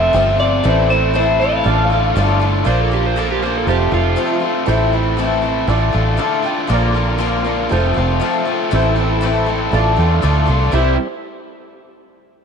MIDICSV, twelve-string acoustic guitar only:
0, 0, Header, 1, 2, 480
1, 0, Start_track
1, 0, Key_signature, 0, "major"
1, 0, Tempo, 504202
1, 618, Time_signature, 4, 2, 24, 8
1, 11850, End_track
2, 0, Start_track
2, 0, Title_t, "Twelve-string acoustic guitar"
2, 0, Program_c, 0, 25
2, 0, Note_on_c, 0, 60, 45
2, 0, Note_on_c, 0, 65, 50
2, 0, Note_on_c, 0, 69, 53
2, 123, Note_on_c, 0, 53, 84
2, 125, Note_off_c, 0, 60, 0
2, 132, Note_on_c, 0, 57, 81
2, 134, Note_off_c, 0, 65, 0
2, 137, Note_on_c, 0, 60, 85
2, 140, Note_off_c, 0, 69, 0
2, 146, Note_on_c, 0, 65, 94
2, 153, Note_on_c, 0, 69, 95
2, 359, Note_off_c, 0, 69, 0
2, 370, Note_on_c, 0, 69, 61
2, 371, Note_off_c, 0, 53, 0
2, 373, Note_off_c, 0, 65, 0
2, 375, Note_off_c, 0, 57, 0
2, 377, Note_off_c, 0, 60, 0
2, 384, Note_on_c, 0, 65, 50
2, 400, Note_on_c, 0, 60, 44
2, 599, Note_off_c, 0, 60, 0
2, 603, Note_on_c, 0, 57, 78
2, 605, Note_off_c, 0, 69, 0
2, 606, Note_on_c, 0, 45, 81
2, 610, Note_on_c, 0, 52, 83
2, 611, Note_on_c, 0, 60, 92
2, 615, Note_off_c, 0, 65, 0
2, 617, Note_on_c, 0, 69, 86
2, 619, Note_on_c, 0, 64, 89
2, 836, Note_off_c, 0, 69, 0
2, 843, Note_off_c, 0, 64, 0
2, 848, Note_on_c, 0, 69, 55
2, 849, Note_off_c, 0, 60, 0
2, 850, Note_off_c, 0, 57, 0
2, 851, Note_off_c, 0, 45, 0
2, 853, Note_off_c, 0, 52, 0
2, 855, Note_on_c, 0, 64, 55
2, 860, Note_on_c, 0, 60, 50
2, 875, Note_on_c, 0, 57, 49
2, 1081, Note_off_c, 0, 57, 0
2, 1081, Note_on_c, 0, 45, 85
2, 1088, Note_off_c, 0, 69, 0
2, 1089, Note_off_c, 0, 60, 0
2, 1090, Note_off_c, 0, 64, 0
2, 1093, Note_on_c, 0, 57, 82
2, 1094, Note_on_c, 0, 52, 85
2, 1099, Note_on_c, 0, 69, 89
2, 1101, Note_on_c, 0, 60, 87
2, 1101, Note_on_c, 0, 64, 87
2, 1329, Note_off_c, 0, 45, 0
2, 1329, Note_off_c, 0, 69, 0
2, 1335, Note_off_c, 0, 52, 0
2, 1335, Note_off_c, 0, 57, 0
2, 1339, Note_off_c, 0, 60, 0
2, 1339, Note_off_c, 0, 64, 0
2, 1341, Note_on_c, 0, 69, 59
2, 1355, Note_on_c, 0, 64, 57
2, 1362, Note_on_c, 0, 60, 54
2, 1366, Note_on_c, 0, 57, 43
2, 1549, Note_off_c, 0, 57, 0
2, 1561, Note_on_c, 0, 57, 65
2, 1574, Note_off_c, 0, 60, 0
2, 1578, Note_on_c, 0, 62, 63
2, 1579, Note_off_c, 0, 64, 0
2, 1579, Note_off_c, 0, 69, 0
2, 1583, Note_on_c, 0, 65, 65
2, 1597, Note_on_c, 0, 69, 75
2, 1796, Note_off_c, 0, 69, 0
2, 1808, Note_on_c, 0, 69, 56
2, 1809, Note_off_c, 0, 57, 0
2, 1815, Note_off_c, 0, 65, 0
2, 1817, Note_off_c, 0, 62, 0
2, 1826, Note_on_c, 0, 65, 52
2, 1835, Note_on_c, 0, 62, 49
2, 1838, Note_on_c, 0, 57, 42
2, 2050, Note_off_c, 0, 57, 0
2, 2052, Note_off_c, 0, 69, 0
2, 2053, Note_on_c, 0, 45, 97
2, 2059, Note_off_c, 0, 62, 0
2, 2061, Note_off_c, 0, 65, 0
2, 2062, Note_on_c, 0, 50, 88
2, 2062, Note_on_c, 0, 57, 100
2, 2070, Note_on_c, 0, 62, 92
2, 2074, Note_on_c, 0, 69, 104
2, 2078, Note_on_c, 0, 65, 103
2, 2270, Note_off_c, 0, 69, 0
2, 2281, Note_on_c, 0, 69, 68
2, 2286, Note_off_c, 0, 62, 0
2, 2287, Note_off_c, 0, 65, 0
2, 2295, Note_off_c, 0, 45, 0
2, 2298, Note_on_c, 0, 62, 55
2, 2299, Note_off_c, 0, 50, 0
2, 2299, Note_off_c, 0, 57, 0
2, 2299, Note_on_c, 0, 65, 64
2, 2311, Note_on_c, 0, 57, 57
2, 2517, Note_on_c, 0, 46, 82
2, 2521, Note_off_c, 0, 62, 0
2, 2522, Note_on_c, 0, 53, 91
2, 2528, Note_off_c, 0, 65, 0
2, 2529, Note_off_c, 0, 57, 0
2, 2529, Note_off_c, 0, 69, 0
2, 2533, Note_on_c, 0, 58, 91
2, 2533, Note_on_c, 0, 62, 97
2, 2540, Note_on_c, 0, 65, 93
2, 2540, Note_on_c, 0, 70, 95
2, 2760, Note_off_c, 0, 70, 0
2, 2767, Note_off_c, 0, 46, 0
2, 2769, Note_off_c, 0, 53, 0
2, 2772, Note_on_c, 0, 70, 61
2, 2773, Note_off_c, 0, 65, 0
2, 2775, Note_off_c, 0, 58, 0
2, 2775, Note_off_c, 0, 62, 0
2, 2784, Note_on_c, 0, 65, 55
2, 2793, Note_on_c, 0, 62, 52
2, 2802, Note_on_c, 0, 58, 52
2, 3008, Note_on_c, 0, 46, 79
2, 3010, Note_off_c, 0, 58, 0
2, 3011, Note_off_c, 0, 62, 0
2, 3013, Note_off_c, 0, 65, 0
2, 3014, Note_off_c, 0, 70, 0
2, 3017, Note_on_c, 0, 53, 87
2, 3022, Note_on_c, 0, 58, 84
2, 3023, Note_on_c, 0, 62, 81
2, 3024, Note_on_c, 0, 65, 97
2, 3034, Note_on_c, 0, 70, 94
2, 3249, Note_off_c, 0, 70, 0
2, 3252, Note_off_c, 0, 46, 0
2, 3257, Note_off_c, 0, 53, 0
2, 3260, Note_off_c, 0, 58, 0
2, 3260, Note_off_c, 0, 62, 0
2, 3260, Note_on_c, 0, 70, 66
2, 3261, Note_off_c, 0, 65, 0
2, 3273, Note_on_c, 0, 65, 58
2, 3292, Note_on_c, 0, 62, 57
2, 3297, Note_on_c, 0, 58, 52
2, 3491, Note_off_c, 0, 58, 0
2, 3495, Note_on_c, 0, 57, 69
2, 3499, Note_off_c, 0, 70, 0
2, 3501, Note_off_c, 0, 62, 0
2, 3503, Note_off_c, 0, 65, 0
2, 3505, Note_on_c, 0, 60, 66
2, 3514, Note_on_c, 0, 65, 74
2, 3527, Note_on_c, 0, 69, 80
2, 3716, Note_off_c, 0, 69, 0
2, 3728, Note_on_c, 0, 69, 57
2, 3737, Note_off_c, 0, 57, 0
2, 3738, Note_off_c, 0, 65, 0
2, 3741, Note_off_c, 0, 60, 0
2, 3750, Note_on_c, 0, 65, 57
2, 3757, Note_on_c, 0, 60, 44
2, 3957, Note_off_c, 0, 60, 0
2, 3960, Note_off_c, 0, 65, 0
2, 3960, Note_on_c, 0, 53, 90
2, 3968, Note_on_c, 0, 57, 96
2, 3968, Note_on_c, 0, 60, 96
2, 3969, Note_off_c, 0, 69, 0
2, 3971, Note_on_c, 0, 65, 91
2, 3981, Note_on_c, 0, 69, 100
2, 4175, Note_off_c, 0, 69, 0
2, 4187, Note_on_c, 0, 69, 57
2, 4189, Note_off_c, 0, 65, 0
2, 4201, Note_on_c, 0, 65, 52
2, 4209, Note_off_c, 0, 53, 0
2, 4210, Note_off_c, 0, 60, 0
2, 4213, Note_off_c, 0, 57, 0
2, 4222, Note_on_c, 0, 60, 48
2, 4435, Note_on_c, 0, 45, 85
2, 4443, Note_off_c, 0, 60, 0
2, 4443, Note_off_c, 0, 69, 0
2, 4443, Note_on_c, 0, 52, 84
2, 4450, Note_off_c, 0, 65, 0
2, 4454, Note_on_c, 0, 60, 81
2, 4457, Note_on_c, 0, 57, 89
2, 4465, Note_on_c, 0, 64, 93
2, 4465, Note_on_c, 0, 69, 93
2, 4678, Note_off_c, 0, 69, 0
2, 4687, Note_off_c, 0, 45, 0
2, 4687, Note_off_c, 0, 64, 0
2, 4690, Note_on_c, 0, 69, 58
2, 4691, Note_off_c, 0, 52, 0
2, 4697, Note_off_c, 0, 60, 0
2, 4698, Note_off_c, 0, 57, 0
2, 4698, Note_on_c, 0, 64, 55
2, 4707, Note_on_c, 0, 60, 58
2, 4714, Note_on_c, 0, 57, 56
2, 4921, Note_on_c, 0, 45, 79
2, 4926, Note_off_c, 0, 57, 0
2, 4928, Note_off_c, 0, 60, 0
2, 4933, Note_off_c, 0, 64, 0
2, 4933, Note_on_c, 0, 52, 88
2, 4935, Note_off_c, 0, 69, 0
2, 4938, Note_on_c, 0, 57, 87
2, 4940, Note_on_c, 0, 60, 89
2, 4944, Note_on_c, 0, 64, 88
2, 4947, Note_on_c, 0, 69, 92
2, 5145, Note_off_c, 0, 69, 0
2, 5156, Note_off_c, 0, 64, 0
2, 5156, Note_on_c, 0, 69, 66
2, 5163, Note_off_c, 0, 60, 0
2, 5168, Note_on_c, 0, 64, 57
2, 5171, Note_off_c, 0, 45, 0
2, 5174, Note_on_c, 0, 60, 53
2, 5177, Note_off_c, 0, 52, 0
2, 5179, Note_off_c, 0, 57, 0
2, 5189, Note_on_c, 0, 57, 56
2, 5391, Note_off_c, 0, 57, 0
2, 5402, Note_on_c, 0, 57, 77
2, 5408, Note_off_c, 0, 69, 0
2, 5409, Note_off_c, 0, 60, 0
2, 5413, Note_on_c, 0, 62, 72
2, 5414, Note_off_c, 0, 64, 0
2, 5422, Note_on_c, 0, 65, 76
2, 5430, Note_on_c, 0, 69, 85
2, 5628, Note_off_c, 0, 69, 0
2, 5640, Note_on_c, 0, 69, 62
2, 5641, Note_off_c, 0, 65, 0
2, 5652, Note_off_c, 0, 57, 0
2, 5652, Note_off_c, 0, 62, 0
2, 5652, Note_on_c, 0, 65, 52
2, 5664, Note_on_c, 0, 62, 52
2, 5672, Note_on_c, 0, 57, 47
2, 5874, Note_on_c, 0, 45, 88
2, 5875, Note_off_c, 0, 57, 0
2, 5883, Note_off_c, 0, 69, 0
2, 5883, Note_on_c, 0, 50, 92
2, 5884, Note_off_c, 0, 65, 0
2, 5886, Note_off_c, 0, 62, 0
2, 5886, Note_on_c, 0, 57, 98
2, 5895, Note_on_c, 0, 65, 86
2, 5895, Note_on_c, 0, 69, 92
2, 5897, Note_on_c, 0, 62, 97
2, 6108, Note_off_c, 0, 69, 0
2, 6117, Note_off_c, 0, 65, 0
2, 6119, Note_on_c, 0, 69, 66
2, 6128, Note_off_c, 0, 45, 0
2, 6128, Note_off_c, 0, 62, 0
2, 6129, Note_on_c, 0, 65, 59
2, 6132, Note_off_c, 0, 50, 0
2, 6134, Note_off_c, 0, 57, 0
2, 6140, Note_on_c, 0, 62, 52
2, 6153, Note_on_c, 0, 57, 50
2, 6353, Note_on_c, 0, 46, 93
2, 6361, Note_off_c, 0, 62, 0
2, 6362, Note_on_c, 0, 53, 87
2, 6364, Note_off_c, 0, 65, 0
2, 6365, Note_off_c, 0, 57, 0
2, 6369, Note_on_c, 0, 58, 92
2, 6370, Note_off_c, 0, 69, 0
2, 6372, Note_on_c, 0, 62, 99
2, 6374, Note_on_c, 0, 70, 100
2, 6376, Note_on_c, 0, 65, 100
2, 6597, Note_off_c, 0, 70, 0
2, 6608, Note_off_c, 0, 46, 0
2, 6609, Note_on_c, 0, 70, 59
2, 6612, Note_off_c, 0, 53, 0
2, 6613, Note_off_c, 0, 65, 0
2, 6615, Note_off_c, 0, 58, 0
2, 6617, Note_off_c, 0, 62, 0
2, 6624, Note_on_c, 0, 65, 62
2, 6629, Note_on_c, 0, 62, 54
2, 6641, Note_on_c, 0, 58, 55
2, 6827, Note_off_c, 0, 58, 0
2, 6836, Note_on_c, 0, 46, 89
2, 6837, Note_off_c, 0, 62, 0
2, 6839, Note_on_c, 0, 58, 95
2, 6840, Note_on_c, 0, 53, 82
2, 6843, Note_off_c, 0, 65, 0
2, 6849, Note_on_c, 0, 62, 97
2, 6851, Note_off_c, 0, 70, 0
2, 6855, Note_on_c, 0, 65, 94
2, 6863, Note_on_c, 0, 70, 104
2, 7078, Note_off_c, 0, 70, 0
2, 7089, Note_off_c, 0, 46, 0
2, 7089, Note_on_c, 0, 70, 63
2, 7090, Note_off_c, 0, 58, 0
2, 7090, Note_off_c, 0, 65, 0
2, 7091, Note_off_c, 0, 53, 0
2, 7095, Note_off_c, 0, 62, 0
2, 7101, Note_on_c, 0, 65, 60
2, 7108, Note_on_c, 0, 62, 58
2, 7113, Note_on_c, 0, 58, 53
2, 7319, Note_off_c, 0, 58, 0
2, 7323, Note_on_c, 0, 57, 67
2, 7333, Note_off_c, 0, 62, 0
2, 7335, Note_off_c, 0, 70, 0
2, 7337, Note_off_c, 0, 65, 0
2, 7337, Note_on_c, 0, 60, 72
2, 7348, Note_on_c, 0, 65, 79
2, 7350, Note_on_c, 0, 69, 78
2, 7548, Note_off_c, 0, 69, 0
2, 7560, Note_on_c, 0, 69, 62
2, 7570, Note_off_c, 0, 65, 0
2, 7572, Note_off_c, 0, 57, 0
2, 7579, Note_off_c, 0, 60, 0
2, 7582, Note_on_c, 0, 65, 57
2, 7593, Note_on_c, 0, 60, 49
2, 7803, Note_off_c, 0, 60, 0
2, 7803, Note_on_c, 0, 53, 85
2, 7809, Note_off_c, 0, 65, 0
2, 7811, Note_off_c, 0, 69, 0
2, 7814, Note_on_c, 0, 60, 93
2, 7817, Note_on_c, 0, 57, 89
2, 7820, Note_on_c, 0, 65, 109
2, 7826, Note_on_c, 0, 69, 106
2, 8036, Note_off_c, 0, 69, 0
2, 8048, Note_on_c, 0, 69, 69
2, 8052, Note_off_c, 0, 53, 0
2, 8053, Note_off_c, 0, 65, 0
2, 8058, Note_off_c, 0, 60, 0
2, 8059, Note_off_c, 0, 57, 0
2, 8064, Note_on_c, 0, 65, 60
2, 8075, Note_on_c, 0, 60, 51
2, 8290, Note_on_c, 0, 52, 91
2, 8291, Note_off_c, 0, 60, 0
2, 8293, Note_on_c, 0, 45, 90
2, 8294, Note_off_c, 0, 69, 0
2, 8295, Note_off_c, 0, 65, 0
2, 8298, Note_on_c, 0, 57, 94
2, 8299, Note_on_c, 0, 64, 88
2, 8302, Note_on_c, 0, 60, 99
2, 8306, Note_on_c, 0, 69, 98
2, 8515, Note_off_c, 0, 69, 0
2, 8526, Note_on_c, 0, 69, 66
2, 8530, Note_off_c, 0, 64, 0
2, 8536, Note_off_c, 0, 52, 0
2, 8537, Note_off_c, 0, 45, 0
2, 8539, Note_off_c, 0, 57, 0
2, 8542, Note_off_c, 0, 60, 0
2, 8542, Note_on_c, 0, 64, 64
2, 8553, Note_on_c, 0, 60, 52
2, 8557, Note_on_c, 0, 57, 54
2, 8766, Note_off_c, 0, 57, 0
2, 8767, Note_on_c, 0, 45, 97
2, 8774, Note_off_c, 0, 60, 0
2, 8774, Note_off_c, 0, 69, 0
2, 8775, Note_on_c, 0, 52, 85
2, 8776, Note_off_c, 0, 64, 0
2, 8778, Note_on_c, 0, 57, 93
2, 8786, Note_on_c, 0, 60, 91
2, 8787, Note_on_c, 0, 64, 98
2, 8789, Note_on_c, 0, 69, 96
2, 8998, Note_off_c, 0, 69, 0
2, 9006, Note_off_c, 0, 64, 0
2, 9009, Note_on_c, 0, 69, 68
2, 9013, Note_off_c, 0, 45, 0
2, 9017, Note_off_c, 0, 52, 0
2, 9017, Note_off_c, 0, 60, 0
2, 9018, Note_on_c, 0, 64, 65
2, 9019, Note_off_c, 0, 57, 0
2, 9029, Note_on_c, 0, 60, 55
2, 9040, Note_on_c, 0, 57, 54
2, 9238, Note_off_c, 0, 57, 0
2, 9250, Note_on_c, 0, 57, 68
2, 9254, Note_off_c, 0, 69, 0
2, 9259, Note_off_c, 0, 64, 0
2, 9264, Note_off_c, 0, 60, 0
2, 9268, Note_on_c, 0, 62, 70
2, 9276, Note_on_c, 0, 69, 79
2, 9277, Note_on_c, 0, 65, 72
2, 9472, Note_off_c, 0, 69, 0
2, 9484, Note_on_c, 0, 69, 64
2, 9494, Note_off_c, 0, 57, 0
2, 9496, Note_off_c, 0, 65, 0
2, 9497, Note_off_c, 0, 62, 0
2, 9507, Note_on_c, 0, 65, 61
2, 9508, Note_on_c, 0, 62, 55
2, 9521, Note_on_c, 0, 57, 48
2, 9725, Note_off_c, 0, 57, 0
2, 9728, Note_off_c, 0, 62, 0
2, 9730, Note_on_c, 0, 50, 97
2, 9731, Note_off_c, 0, 69, 0
2, 9733, Note_off_c, 0, 65, 0
2, 9734, Note_on_c, 0, 45, 99
2, 9736, Note_on_c, 0, 57, 89
2, 9740, Note_on_c, 0, 62, 102
2, 9745, Note_on_c, 0, 65, 98
2, 9750, Note_on_c, 0, 69, 94
2, 9947, Note_off_c, 0, 69, 0
2, 9959, Note_on_c, 0, 69, 62
2, 9961, Note_off_c, 0, 65, 0
2, 9964, Note_off_c, 0, 62, 0
2, 9972, Note_on_c, 0, 65, 60
2, 9974, Note_off_c, 0, 50, 0
2, 9975, Note_on_c, 0, 62, 55
2, 9976, Note_off_c, 0, 45, 0
2, 9977, Note_off_c, 0, 57, 0
2, 9989, Note_on_c, 0, 57, 58
2, 10202, Note_on_c, 0, 48, 76
2, 10207, Note_on_c, 0, 52, 80
2, 10208, Note_off_c, 0, 69, 0
2, 10210, Note_off_c, 0, 57, 0
2, 10210, Note_off_c, 0, 62, 0
2, 10212, Note_off_c, 0, 65, 0
2, 10214, Note_on_c, 0, 55, 90
2, 10214, Note_on_c, 0, 60, 85
2, 10216, Note_on_c, 0, 64, 89
2, 10221, Note_on_c, 0, 72, 89
2, 10402, Note_off_c, 0, 48, 0
2, 10404, Note_off_c, 0, 52, 0
2, 10408, Note_off_c, 0, 55, 0
2, 10408, Note_off_c, 0, 60, 0
2, 10409, Note_off_c, 0, 64, 0
2, 10411, Note_off_c, 0, 72, 0
2, 11850, End_track
0, 0, End_of_file